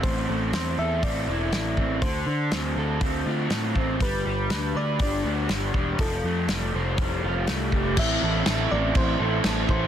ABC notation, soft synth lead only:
X:1
M:4/4
L:1/8
Q:1/4=121
K:Am
V:1 name="Soft synth lead"
c2 c e d4 | c4 z4 | B2 B d d4 | A6 z2 |
e3 d c3 c |]